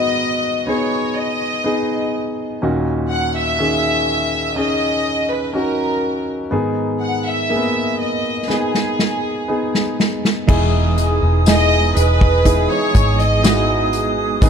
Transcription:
0.00 2.59 G#2 soft
0.00 2.59 D#3 soft
0.00 0.67 B3 medium
0.00 0.68 D#4 soft
0.00 0.63 F#4 medium
0.00 0.68 G#4 medium
0.00 0.64 D#5 medium
0.67 1.60 B3 medium
0.67 1.60 D#4 soft
0.67 1.60 G#4 medium
0.67 1.14 C#5 medium
1.17 2.14 D#5 medium
1.64 2.57 B3 soft
1.64 2.58 D#4 soft
1.64 2.58 G#4 medium
2.62 6.48 D#2 soft
2.62 6.48 A#2 medium
2.62 3.55 C#4 medium
2.62 3.55 D#4 soft
2.62 3.56 F#4 medium
3.11 3.34 F#5 medium
3.36 4.53 E5 medium
3.59 4.52 D#3 soft
3.59 4.52 C#4 soft
3.59 4.52 G#4 medium
4.56 5.49 C#4 soft
4.56 5.50 D#4 soft
4.56 5.50 G#4 soft
4.56 5.30 D#5 medium
5.30 5.55 B4 medium
5.54 6.47 C#4 soft
5.54 6.48 D#4 soft
5.54 6.48 F#4 medium
5.54 6.25 A#4 medium
6.51 10.44 G#2 soft
6.51 10.44 D#3 soft
6.51 7.45 B3 medium
6.51 7.45 D#4 medium
6.51 7.46 G#4 medium
7.01 7.24 F#5 medium
7.26 8.00 E5 medium
7.50 7.57 A#3 soft
7.50 8.44 G#4 medium
7.56 8.46 B3 soft
8.00 8.46 D#5 medium
8.48 9.43 B3 soft
8.48 9.44 D#4 soft
8.48 9.99 G#4 medium
8.48 9.44 G#4 medium
8.48 snare soft
8.75 snare soft
8.99 snare soft
9.48 10.43 B3 soft
9.48 10.44 D#4 soft
9.48 10.44 G#4 medium
9.75 snare medium
10.00 snare medium
10.25 snare medium
10.47 11.18 E1 medium
10.47 11.92 B2 medium
10.47 10.97 E3 medium
10.47 10.98 G#3 medium
10.47 10.98 B3 medium
10.47 11.42 D#4 medium
10.47 10.97 D#4 medium
10.47 11.42 E4 medium
10.47 11.42 G#4 medium
10.47 10.96 G#4 medium
10.47 14.50 G#4 medium
10.47 14.38 D#5 medium
10.47 14.38 G#5 medium
10.47 14.50 D#6 medium
10.47 kick loud
10.47 crash medium
10.97 11.46 B3 soft
10.97 11.47 D#4 soft
10.97 11.47 G#4 medium
10.97 closed hi-hat medium
11.23 11.92 E1 medium
11.46 11.96 G#3 medium
11.46 11.96 B3 medium
11.46 12.40 D#4 medium
11.46 11.96 D#4 medium
11.46 12.40 E4 medium
11.46 12.41 G#4 medium
11.46 11.94 G#4 medium
11.46 11.94 D#5 loud
11.46 snare medium
11.46 closed hi-hat medium
11.46 tambourine medium
11.95 12.66 E1 medium
11.95 12.45 B3 soft
11.95 12.45 D#4 soft
11.95 12.45 G#4 soft
11.95 12.71 B4 loud
11.95 closed hi-hat medium
12.21 kick loud
12.45 13.44 E3 medium
12.45 13.43 G#3 medium
12.45 13.44 B3 medium
12.45 13.39 D#4 medium
12.45 13.45 D#4 medium
12.45 13.39 E4 medium
12.45 13.39 G#4 medium
12.45 13.45 G#4 medium
12.45 kick medium
12.45 closed hi-hat medium
12.70 13.20 C#5 medium
12.95 14.38 G#1 medium
12.95 kick loud
12.95 closed hi-hat medium
13.20 13.93 D#5 medium
13.20 closed hi-hat soft
13.43 14.42 G#3 medium
13.43 14.42 B3 medium
13.43 14.36 D#4 medium
13.43 14.42 D#4 medium
13.43 14.37 E4 medium
13.43 14.37 F#4 medium
13.43 14.43 G#4 medium
13.43 snare loud
13.43 closed hi-hat medium
13.43 tambourine medium
13.93 closed hi-hat medium
14.41 14.50 G#1 loud
14.41 14.50 G#2 medium
14.41 14.50 D#3 medium
14.41 14.50 G#3 medium
14.41 14.50 B3 medium
14.41 14.50 D#4 medium
14.41 14.50 G#4 medium
14.41 14.50 D#5 medium
14.41 14.50 G#5 medium
14.41 kick loud
14.41 closed hi-hat medium

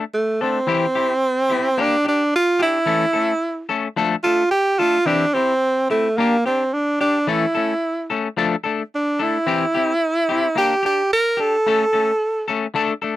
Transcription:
0.14 0.43 A3 medium
0.41 0.59 A3 soft
0.41 1.82 C4 medium
0.41 0.59 D4 soft
0.41 0.58 A4 medium
0.67 0.85 E3 medium
0.67 0.85 C4 medium
0.67 0.85 E4 medium
0.67 0.86 G4 medium
0.95 1.14 C4 soft
0.95 1.13 E4 soft
0.95 1.13 G4 medium
1.50 1.69 C4 soft
1.50 1.68 E4 medium
1.50 1.67 G4 medium
1.78 1.95 A#3 medium
1.78 1.95 D4 medium
1.78 2.07 D4 loud
1.78 1.96 G4 medium
2.05 2.23 D4 soft
2.05 2.33 D4 medium
2.05 2.22 G4 soft
2.36 2.60 F4 loud
2.59 2.78 D4 soft
2.59 3.67 E4 loud
2.59 2.77 G4 medium
2.86 3.04 E3 medium
2.86 3.04 A3 medium
2.86 3.05 C#4 medium
2.86 3.05 A4 medium
3.13 3.33 A3 soft
3.13 3.32 C#4 soft
3.13 3.32 A4 medium
3.69 3.88 A3 soft
3.69 3.87 C#4 medium
3.69 3.87 A4 medium
3.96 4.14 F3 medium
3.96 4.15 A3 medium
3.96 4.15 D4 medium
3.96 4.15 A4 loud
4.24 4.43 A3 soft
4.24 4.42 D4 soft
4.24 4.50 F4 medium
4.24 4.42 A4 soft
4.51 4.81 G4 loud
4.79 4.98 A3 soft
4.79 4.97 D4 soft
4.79 5.08 F4 loud
4.79 4.97 A4 medium
5.06 5.24 E3 medium
5.06 5.24 C4 medium
5.06 5.35 D4 medium
5.06 5.25 E4 medium
5.06 5.25 G4 medium
5.34 5.89 C4 medium
5.34 5.53 C4 soft
5.34 5.53 E4 soft
5.34 5.52 G4 soft
5.90 6.19 A3 medium
5.90 6.08 C4 soft
5.90 6.08 E4 soft
5.90 muted clean electric guitar stroke medium
6.18 6.45 A#3 medium
6.18 6.35 A#3 medium
6.18 6.36 D4 medium
6.18 6.36 G4 medium
6.46 6.75 C4 medium
6.46 6.64 D4 soft
6.46 6.63 G4 soft
6.74 7.00 D4 medium
7.01 7.30 D4 medium
7.01 7.19 D4 soft
7.01 7.18 G4 medium
7.27 7.45 E3 medium
7.27 7.45 A3 medium
7.27 7.45 C#4 medium
7.27 8.10 E4 medium
7.27 7.45 A4 medium
7.55 7.73 A3 soft
7.55 7.73 C#4 soft
7.55 7.72 A4 medium
8.10 8.28 A3 soft
8.10 8.28 C#4 medium
8.10 8.27 A4 medium
8.37 8.54 F3 medium
8.37 8.55 A3 medium
8.37 8.55 D4 medium
8.37 8.55 A4 medium
8.64 8.83 A3 soft
8.64 8.82 D4 medium
8.64 8.81 A4 medium
8.95 9.24 D4 medium
9.19 9.37 A3 soft
9.19 9.37 D4 soft
9.19 10.57 E4 medium
9.19 9.37 A4 soft
9.47 9.64 E3 medium
9.47 9.64 C4 medium
9.47 9.64 E4 medium
9.47 9.65 G4 medium
9.75 9.93 C4 soft
9.75 9.92 E4 soft
9.75 9.92 G4 medium
10.29 10.47 C4 soft
10.29 10.47 E4 medium
10.29 10.46 G4 medium
10.56 10.73 A#3 medium
10.56 10.74 D4 medium
10.56 10.74 G4 medium
10.56 10.83 G4 medium
10.83 11.02 D4 soft
10.83 11.01 G4 medium
10.83 11.11 G4 medium
11.13 11.42 A#4 loud
11.37 11.56 D4 soft
11.37 11.55 G4 medium
11.37 12.49 A4 medium
11.67 11.84 A3 medium
11.67 11.84 C#4 medium
11.67 11.84 A4 medium
11.67 muted clean electric guitar stroke medium
11.93 12.11 A3 soft
11.93 12.11 C#4 soft
11.93 12.11 A4 medium
12.48 12.66 A3 medium
12.48 12.66 C#4 medium
12.48 12.65 A4 medium
12.74 12.92 A3 medium
12.74 12.93 D4 medium
12.74 12.93 A4 medium
12.74 muted clean electric guitar stroke medium
13.02 13.16 A3 soft
13.02 13.16 D4 medium
13.02 13.16 A4 medium

